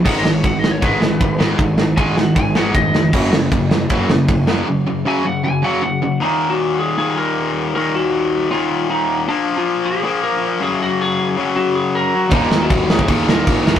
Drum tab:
CC |x---------------|----------------|x---------------|----------------|
RD |----x---x---x---|x---x---x---x---|----x---x---x---|----------------|
SD |--o---o---o---o-|--o---o---o---o-|--o---o---o---o-|----------------|
BD |o---o---o---o---|o---o---o---o---|o---o---o---o---|----------------|

CC |----------------|----------------|----------------|----------------|
RD |----------------|----------------|----------------|----------------|
SD |----------------|----------------|----------------|----------------|
BD |----------------|----------------|----------------|----------------|

CC |x---x---x---x---|
RD |----------------|
SD |--o---o---o---o-|
BD |o---o--oo---o--o|